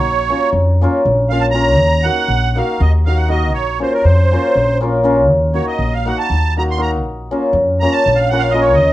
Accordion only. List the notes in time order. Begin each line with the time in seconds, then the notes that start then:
Already playing: C#5
1.30 F5
1.41 A5
1.51 A#5
2.04 F#5
2.57 F5
2.80 D#5
3.06 F5
3.17 F#5
3.30 D#5
3.54 C#5
3.82 C5
3.93 A#4
4.04 C5
5.54 C#5
5.67 D#5
5.93 F5
6.07 F#5
6.18 A5
6.58 A#5
6.71 C6
6.82 A#5
7.80 A#5
7.92 A5
8.15 F5
8.30 F#5
8.39 F5
8.50 D#5
8.62 C#5
8.74 D#5